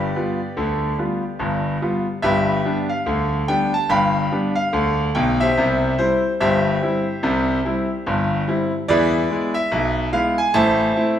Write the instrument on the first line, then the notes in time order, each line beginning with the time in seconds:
grand piano
Already playing: G4 B4 D5
0.16 G3 B3 F4
0.57 D2 D3
0.98 G3 B3 F4
1.39 G1 G2
1.82 G3 B3 F4
2.22 G1 G2 G4 B4 E5
2.65 G3 B3 D4
2.89 F5
3.06 D2 D3
3.48 G3 B3 D4 G5
3.74 A5
3.89 G1 G2 F5 G5 B5
4.32 G3 B3 D4
4.55 F5
4.73 D2 D3
5.15 B1 B2 G5
5.40 G4 C5 E5
5.57 C2 C3
5.98 G3 C4 E4 C5
6.40 G1 G2 G4 C5 E5
6.82 G3 C4 E4
7.23 C2 C3
7.65 G3 C4 E4
8.06 G1 G2
8.48 G3 C4 E4
8.88 E2 E3 G#4 B4 D5
9.31 G#3 B3 E4
9.54 E5
9.72 B1 B2
10.13 G#3 B3 E4 F5
10.38 G#5
10.54 A1 A2 C5 E5 A5
10.95 A3 C4 E4